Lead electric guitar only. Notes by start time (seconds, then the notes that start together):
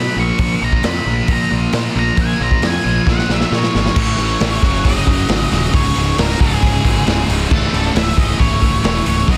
Already playing: B5
0.19 C#6
0.64 A#5
0.86 B5
1.31 A#5
1.99 A#5
2.21 G#5
2.43 A#5
2.67 G#5
3.10 F#5
3.33 E5
3.54 C#5
3.98 C#5
4.85 D#5
5.74 C#5
6.19 A#4
6.41 G#4
7.51 A4
7.96 E5
8.18 D#5
8.40 C#5
8.85 C#5
9.06 C#5
9.31 D#5